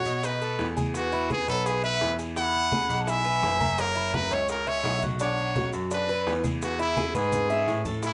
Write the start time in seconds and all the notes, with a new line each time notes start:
Already playing: F#4 C#5 F#5
0.05 B2, short guiro, maracas
0.23 D#4 B4 D#5, high bongo, high conga, long guiro, maracas
0.41 A4, high conga, maracas
0.59 E2, high bongo, low bongo, high conga, short guiro, maracas
0.77 G#4, high conga, short guiro, maracas
0.94 F#4 B4, high bongo, high conga, long guiro, maracas
1.12 E4, high conga, maracas
1.30 G#4 B4, high bongo, high conga, short guiro, maracas
1.48 B1 A4 B4 C#5, high bongo, short guiro, maracas
1.66 G#4 B4, high bongo, high conga, long guiro, maracas
1.84 B4 E5, high bongo, high conga, maracas
2.01 E2, high bongo, low bongo, high conga, short guiro, maracas
2.19 G#4, high bongo, short guiro, maracas
2.36 E4 F#5 B5, high bongo, high conga, long guiro, maracas
2.55 high conga, maracas
2.72 G#4, high bongo, high conga, short guiro, maracas
2.89 B1, short guiro, maracas
3.01 F#5 A5
3.07 E4 E5 G#5, high bongo, high conga, long guiro, maracas
3.24 B4, high conga, maracas
3.43 F#1, high bongo, low bongo, high conga, short guiro, maracas
3.60 A#4, high conga, short guiro, maracas
3.78 A#4 C#5, high bongo, high conga, maracas
3.95 E4, high conga, maracas
4.13 A#4 B4 E5, high bongo, high conga, short guiro, maracas
4.31 C#2 C#5 E5, high bongo, short guiro, maracas
4.48 A#4 C#5, high bongo, high conga, long guiro, maracas
4.67 C#5 E5, high bongo, high conga, maracas
4.84 B1, high bongo, low bongo, high conga, short guiro, maracas
5.02 F#4, high bongo, high conga, short guiro, maracas
5.19 D4 C#5 F#5, high bongo, high conga, long guiro, maracas
5.37 high conga, maracas
5.55 F#4, high bongo, high conga, short guiro, maracas
5.73 F#2, short guiro, maracas
5.91 D4 B4 D5, high bongo, high conga, long guiro, maracas
6.08 B4, high conga, maracas
6.27 E2, high bongo, low bongo, high conga, short guiro, maracas
6.44 G#4, high conga, short guiro, maracas
6.62 F#4 B4, high bongo, high conga, long guiro, maracas
6.79 E4 G#4, high conga, maracas
6.97 G#4, high bongo, high conga, short guiro, maracas
7.14 G#2 G#4 B4, high bongo, high conga, short guiro, maracas
7.32 high bongo, high conga, long guiro, maracas
7.50 E5, high bongo, maracas
7.68 A2, low bongo, short guiro, maracas
7.85 A4, low bongo, low conga, short guiro, maracas
8.03 E4 A4, high bongo, high conga, long guiro, maracas